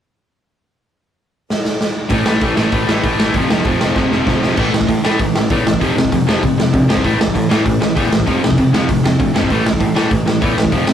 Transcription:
1.50 snare
1.65 snare
1.81 snare
2.09 A1 A2 E3 A3, kick, open hi-hat
2.25 A1 A2 E3 A3, snare
2.41 A1 A2 E3 A3, kick, open hi-hat
2.56 A1 A2 E3 A3, snare
2.72 A1 A2 E3 A3, kick, open hi-hat
2.88 A1 A2 E3 A3, snare
3.03 A1 A2 E3 A3, kick, open hi-hat
3.19 A1 A2 E3 A3, snare
3.34 F1 F2 C3 F3, kick, open hi-hat
3.49 F1 F2 C3 F3, snare
3.65 F1 F2 C3 F3, kick, open hi-hat
3.81 F1 F2 C3 F3, snare
3.96 F1 F2 C3 F3, kick, snare
4.11 F1 F2 C3 F3, snare
4.27 F1 F2 C3 F3, kick, snare
4.41 F1 F2 C3 F3, snare
4.57 A1 A2 E3 A3, kick, crash
4.72 A1 A2 E3, snare
4.81 kick
4.87 A2 E3, kick, open hi-hat
5.04 A2 E3 A3, snare
5.19 A1 A2 E3, kick, open hi-hat
5.35 A1 A2 E3, snare
5.50 E2 A2 E3 A3, kick, open hi-hat
5.65 A1 A2 E3, snare
5.74 kick
5.80 F1 F2 C3 F3, kick, open hi-hat
5.96 F1 F2 C3, snare
6.05 kick
6.12 F1 F2 C3, kick, open hi-hat
6.27 F1 F2 C3 F3, snare
6.43 F1 F2 C3, kick, open hi-hat
6.58 F1 F2 C3, snare
6.73 D2 F2 C3, kick, open hi-hat
6.88 G1 F2 C3 F3, snare
6.97 kick
7.03 A1 A2 E3 A3, kick, open hi-hat
7.18 A1 A2 E3, snare
7.28 kick
7.34 A2 E3, kick, open hi-hat
7.49 A2 E3 A3, snare
7.65 A1 A2 E3, kick, open hi-hat
7.80 A1 A2 E3, snare
7.96 E2 A2 E3 A3, kick, open hi-hat
8.12 A1 A2 E3, snare
8.20 kick
8.26 F1 F2 C3 F3, kick, open hi-hat
8.42 F1 F2 C3, snare
8.51 kick
8.57 F1 F2 C3, kick, open hi-hat
8.73 F1 F2 C3 F3, snare
8.89 F1 F2 C3, kick, open hi-hat
9.04 F1 F2 C3, snare
9.19 D2 F2 C3, kick, open hi-hat
9.34 G1 F2 C3 F3, snare
9.43 kick
9.50 A1 A2 E3 A3, kick, open hi-hat
9.65 A1 A2 E3, snare
9.73 kick
9.80 A2 E3, kick, open hi-hat
9.95 A2 E3 A3, snare
10.11 A1 A2 E3, kick, open hi-hat
10.26 A1 A2 E3, snare
10.41 E2 A2 E3 A3, kick, open hi-hat
10.57 A1 A2 E3, snare
10.65 kick
10.71 F1 F2 C3 F3, kick, open hi-hat
10.87 F1 F2 C3, snare

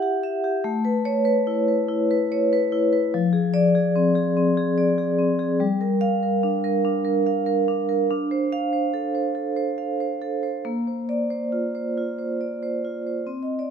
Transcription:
Already playing: E4 G4 E5 F#5
0.02 G4
0.23 E5
0.44 G4
0.64 A3
0.85 B4
1.05 C#5
1.25 B4
1.47 E4
1.68 B4
1.89 E4
2.11 B4
2.32 C#5
2.53 B4
2.72 E4
2.93 B4
3.14 F3
3.33 G#4
3.54 D5
3.75 G#4
3.96 C4
4.15 G#4
4.37 C4
4.57 G#4
4.78 D5
4.98 G#4
5.19 C4
5.39 G#4
5.60 G3
5.81 A#4
6.01 F5
6.23 A#4
6.43 D4
6.64 A#4
6.85 D4
7.05 A#4
7.26 F5
7.46 A#4
7.68 D4
7.89 A#4
8.10 D4
8.31 C5
8.53 F5
8.73 C5
8.94 A4
9.15 C5
9.35 A4
9.56 C5
9.78 F5
10.00 C5
10.22 A4
10.43 C5
10.65 A#3
10.87 C5
11.09 D5
11.30 C5
11.52 F4
11.75 C5
11.97 F4
12.18 C5
12.41 D5
12.63 C5
12.85 F4
13.07 C5
13.27 C4
13.43 D#5
13.59 D5

